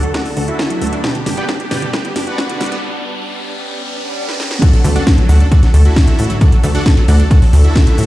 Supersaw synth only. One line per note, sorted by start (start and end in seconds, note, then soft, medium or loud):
0.03 0.10 A4 medium
0.14 0.22 F#4 medium
0.14 0.22 A4 medium
0.14 0.22 D5 medium
0.14 0.22 F#5 medium
0.26 0.33 A4 medium
0.37 0.44 A4 medium
0.48 0.95 E4 medium
0.48 0.95 F#4 medium
0.48 0.95 A4 medium
0.48 0.95 E5 loud
1.04 1.11 G4 medium
1.04 1.11 B4 medium
1.04 1.11 D5 medium
1.04 1.11 G5 medium
1.15 1.23 G4 medium
1.26 1.34 G4 medium
1.38 1.45 G4 medium
1.38 1.45 B4 medium
1.38 1.45 D5 medium
1.38 1.45 G5 medium
1.49 1.56 G4 medium
1.60 1.67 G4 medium
1.71 1.78 G4 medium
1.71 1.78 B4 medium
1.71 1.78 D5 medium
1.71 1.78 G5 medium
1.82 1.90 G4 medium
1.93 2.01 G4 medium
1.93 2.01 B4 medium
1.93 2.01 D5 medium
1.93 2.01 G5 loud
2.05 2.12 G4 medium
2.16 2.23 G4 medium
2.27 2.74 F#4 medium
2.27 2.74 B4 medium
2.27 2.74 D5 medium
2.27 2.74 F#5 medium
4.62 4.69 F#4 medium
4.62 4.69 A4 medium
4.62 4.69 D5 medium
4.62 4.69 F#5 loud
4.73 4.81 A4 medium
4.84 4.92 A4 medium
4.96 5.03 F#4 medium
4.96 5.03 A4 medium
4.96 5.03 D5 medium
4.96 5.03 F#5 loud
5.07 5.14 A4 medium
5.18 5.25 A4 medium
5.29 5.37 F#4 medium
5.29 5.37 A4 medium
5.29 5.37 D5 medium
5.29 5.37 F#5 medium
5.40 5.48 A4 medium
5.52 5.59 F#4 medium
5.52 5.59 A4 medium
5.52 5.59 D5 medium
5.52 5.59 F#5 loud
5.63 5.70 A4 medium
5.74 5.82 A4 medium
5.85 6.32 E4 medium
5.85 6.32 F#4 medium
5.85 6.32 A4 medium
5.85 6.32 E5 loud
6.41 6.49 F#4 medium
6.41 6.49 A4 medium
6.41 6.49 D5 medium
6.41 6.49 F#5 loud
6.53 6.60 A4 medium
6.64 6.71 A4 medium
6.75 6.82 F#4 medium
6.75 6.82 A4 medium
6.75 6.82 D5 medium
6.75 6.82 F#5 loud
6.86 6.93 A4 medium
6.97 7.05 A4 medium
7.08 7.16 F#4 medium
7.08 7.16 A4 medium
7.08 7.16 D5 medium
7.08 7.16 F#5 medium
7.20 7.27 A4 medium
7.31 7.38 F#4 medium
7.31 7.38 A4 medium
7.31 7.38 D5 medium
7.31 7.38 F#5 loud
7.42 7.49 A4 medium
7.53 7.61 A4 medium
7.64 8.06 E4 medium
7.64 8.06 F#4 medium
7.64 8.06 A4 medium
7.64 8.06 E5 loud